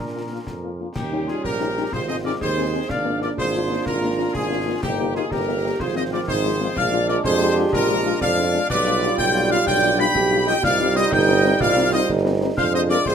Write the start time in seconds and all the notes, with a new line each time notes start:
Already playing: D4 A#4 A#5
0.00 A#2
0.15 A#3 D4 F4
0.31 A#3 D4 F4
0.47 F2, concert bass drum, snare
0.64 A#3 D4 F4
0.80 A#3 D4 F4
0.95 D#2 G3 C#4 D#4 G4 G5, concert bass drum, snare, crash
1.13 C#4 D#4 G4
1.27 C#4 D#4 F4 G4 G#4 G#5, snare
1.43 A#1 G4 A#4 A#5, concert bass drum, snare
1.61 C#4 D#4 G4
1.77 C#4 D#4 G4
1.92 G#1 G#3 C4 F4 G#4 C5 C6, concert bass drum, snare
2.09 C4 D#4 G#4 C5 D#5 D#6
2.25 C4 D#4 G#4 A#4 D5 D6
2.40 D#2 D#4 G#4 C5 C6, concert bass drum, snare
2.57 C4 D#4 G#4
2.73 C4 D#4 G#4
2.89 G#1 A#3 D4 D5 F5 F6, concert bass drum, snare, crash
3.05 A#3 D4 F4
3.21 A#3 D4 F4 A#4 D5 D6, snare
3.37 G#1 F4 G#4 C5 C6, concert bass drum, snare
3.54 A#3 D4 F4
3.70 A#3 D4 F4
3.85 G#1 F4 A#4 A#5, concert bass drum, snare
4.02 A#3 D4 F4
4.19 A#3 D4 F4
4.33 G#1 F4 G#4 G#5, concert bass drum, snare
4.50 A#3 D4 F4
4.67 A#3 D4 F4
4.82 G1 A#3 D#4 G4 G5, concert bass drum, snare, crash
4.99 A#3 D#4 G4
5.15 A#3 D#4 F4 G4 G#4 G#5, snare
5.31 G1 G4 A#4 A#5, concert bass drum, snare
5.48 A#3 D#4 G4
5.64 A#3 D#4 G4
5.79 G#1 F3 C4 F4 G#4 C5 C6, concert bass drum, snare
5.96 G#3 C4 F4 C5 D#5 D#6
6.12 G#3 C4 F4 A#4 D5 D6
6.28 G#1 D#4 G#4 C5 C6, concert bass drum, snare
6.44 G#3 C4 F4
6.60 G#3 C4 F4
6.76 A#1 G#3 D4 D5 F5 F6, concert bass drum, snare, crash
6.92 G#3 D4 F4
7.08 G#3 D4 F4 A#4 D5 D6, snare
7.24 F2 G4 G#4 C5 C6, concert bass drum, snare
7.41 G#3 D4 F4
7.57 G#3 D4 F4
7.73 A#1 F4 A#4 A#5, concert bass drum, snare
7.90 G#3 D4 F4
8.06 G#3 D4 F4
8.21 F2 D5 F5 F6, concert bass drum, snare
8.38 G#3 D4 F4
8.54 G#3 D4 F4
8.70 B1 G3 F4 B4 D5 D6, concert bass drum, snare, crash
8.86 G3 D4 F4
9.02 G3 D4 F4, snare
9.18 B1 D5 G5 G6, concert bass drum, snare
9.34 G3 D4 F4
9.50 G3 D4 F4 D5 F5 F6
9.66 B1 D4 D5 G5 G6, concert bass drum, snare
9.83 G3 D4 F4
9.98 G3 D4 F4 G5 B5 B6
10.15 B1 G4, concert bass drum, snare
10.32 G3 D4 F4
10.47 G3 D4 F4 D#5 G5 G6
10.63 C2 G3 D#4 F4 D5 F5 F6, concert bass drum, snare, crash
10.80 G3 C4 D#4
10.96 G3 C4 D#4 C5 D#5 D#6, snare
11.12 G1 D#4 D#5 G5 G6, concert bass drum, snare
11.28 G3 C4 D#4
11.44 G3 C4 D#4
11.60 C2 F4 D5 F5 F6, concert bass drum, snare
11.76 G3 C4 D#4
11.93 G3 C4 D#4 C5 D#5 D#6
12.09 G1 D#4, concert bass drum, snare
12.25 G3 C4 D#4
12.42 G3 C4 D#4
12.57 F2 G#3 D4 F4 C5 F5 F6, concert bass drum, snare, crash
12.73 G#3 C4 F4 C5 D#5 D#6
12.89 G#3 C4 F4 A#4 D5 D6, snare
13.05 C2 C4 G#4 C5 C6, concert bass drum, snare